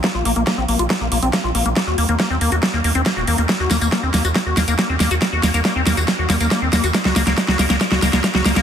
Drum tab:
HH |x-oxx-oxx-oxx-ox|x-oxx-oxx-oxx-ox|x-oxx-oxx-oxx-ox|x-oxx-oxx-oxx-ox|
TB |----------------|----------------|x-xxx-xxx-xxx-xx|x-xxx-xxx-xxx-xx|
SD |o---o---o---o---|o---o---o---o---|o-o-o-o-o-o-o-o-|o-o-o-o-o-o-o-o-|
BD |o---o---o---o---|o---o---o---o---|o---o---o---o---|o---o---o---o---|

HH |x-oxx-oxx-oxx-ox|
TB |x-xxx-xxx-xxx-xx|
SD |oooooooooooooooo|
BD |o---o---o---o---|